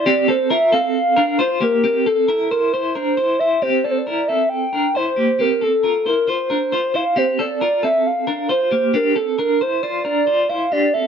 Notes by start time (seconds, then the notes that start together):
Already playing: D5
0.06 C4 G4
0.28 C4 A4 C5
0.50 F4 A#4 E5
0.72 C4 A4 F5
1.17 D4 A#4
1.39 F4 C5
1.61 A#3 G4 A#4
1.84 C4 G4
2.06 C4 A4
2.28 E4 A#4
2.51 E4 A#4 C5
2.72 E4 C5
2.95 D4 A#4
3.17 E4 C5
3.39 E4 C5 E5
3.62 C4 G4 C5
3.84 C4 A4 D5
3.91 C5
3.98 D5
4.07 E4 A#4
4.28 C4 A4 E5
4.49 G5
4.73 D4 A#4
4.95 E4 C5
5.16 A#3 G4
5.39 C4 G4 A#4
5.61 C4 A4
5.83 F4 A#4
6.06 E4 A#4 C5
6.27 F4 C5
6.50 D4 A#4
6.72 F4 C5
6.94 E4 C5 F5
7.16 C4 G4 C5
7.39 C4 A4 D5
7.61 F4 A#4
7.83 C4 A4 E5
8.06 F5
8.27 D4 A#4
8.49 F4 C5
8.71 A#3 G4
8.94 D4 G4 A#4
9.16 C4 A4
9.39 D4 A#4
9.61 E4 C5
9.83 F4 C5 D5
10.05 D4 A#4
10.27 F4 C5
10.49 E4 C5 F5
10.72 D4 G4 D5
10.94 C4 A4 E5